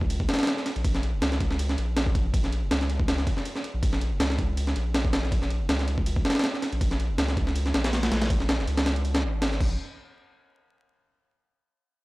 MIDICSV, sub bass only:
0, 0, Header, 1, 2, 480
1, 0, Start_track
1, 0, Key_signature, -5, "minor"
1, 0, Tempo, 372671
1, 1090, Time_signature, 4, 2, 24, 8
1, 15517, End_track
2, 0, Start_track
2, 0, Title_t, "Sub bass"
2, 0, Program_c, 0, 38
2, 0, Note_on_c, 0, 37, 87
2, 349, Note_off_c, 0, 37, 0
2, 978, Note_on_c, 0, 34, 98
2, 1078, Note_off_c, 0, 34, 0
2, 1089, Note_on_c, 0, 34, 98
2, 1459, Note_on_c, 0, 29, 105
2, 1478, Note_off_c, 0, 34, 0
2, 1558, Note_off_c, 0, 29, 0
2, 1569, Note_on_c, 0, 37, 89
2, 2272, Note_off_c, 0, 37, 0
2, 2289, Note_on_c, 0, 34, 88
2, 2752, Note_off_c, 0, 34, 0
2, 2770, Note_on_c, 0, 34, 97
2, 3379, Note_on_c, 0, 29, 102
2, 3399, Note_off_c, 0, 34, 0
2, 3479, Note_off_c, 0, 29, 0
2, 3491, Note_on_c, 0, 37, 88
2, 4193, Note_off_c, 0, 37, 0
2, 4817, Note_on_c, 0, 34, 97
2, 4917, Note_off_c, 0, 34, 0
2, 4930, Note_on_c, 0, 34, 96
2, 5298, Note_on_c, 0, 29, 107
2, 5317, Note_off_c, 0, 34, 0
2, 5398, Note_off_c, 0, 29, 0
2, 5406, Note_on_c, 0, 37, 89
2, 6110, Note_off_c, 0, 37, 0
2, 6129, Note_on_c, 0, 34, 87
2, 6591, Note_off_c, 0, 34, 0
2, 6610, Note_on_c, 0, 34, 96
2, 7220, Note_on_c, 0, 29, 102
2, 7239, Note_off_c, 0, 34, 0
2, 7319, Note_off_c, 0, 29, 0
2, 7330, Note_on_c, 0, 37, 89
2, 8032, Note_off_c, 0, 37, 0
2, 8659, Note_on_c, 0, 34, 97
2, 8759, Note_off_c, 0, 34, 0
2, 8771, Note_on_c, 0, 34, 99
2, 9140, Note_on_c, 0, 29, 104
2, 9159, Note_off_c, 0, 34, 0
2, 9239, Note_off_c, 0, 29, 0
2, 9249, Note_on_c, 0, 37, 93
2, 9952, Note_off_c, 0, 37, 0
2, 9972, Note_on_c, 0, 34, 87
2, 10433, Note_off_c, 0, 34, 0
2, 10452, Note_on_c, 0, 34, 98
2, 11063, Note_on_c, 0, 29, 107
2, 11082, Note_off_c, 0, 34, 0
2, 11161, Note_off_c, 0, 29, 0
2, 11173, Note_on_c, 0, 37, 95
2, 11891, Note_on_c, 0, 32, 85
2, 11910, Note_off_c, 0, 37, 0
2, 12365, Note_off_c, 0, 32, 0
2, 12372, Note_on_c, 0, 34, 99
2, 12594, Note_off_c, 0, 34, 0
2, 15517, End_track
0, 0, End_of_file